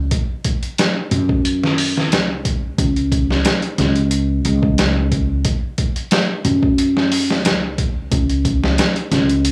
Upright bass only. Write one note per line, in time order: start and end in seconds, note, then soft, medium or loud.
1.11 2.12 F#2 loud
2.12 2.75 C#2 medium
2.78 3.42 C#2 medium
3.78 4.42 C#2 medium
4.45 5.42 C#2 loud
6.45 7.45 F#2 loud
7.45 8.08 C#2 medium
8.12 8.75 C#2 medium
9.11 9.52 C#2 loud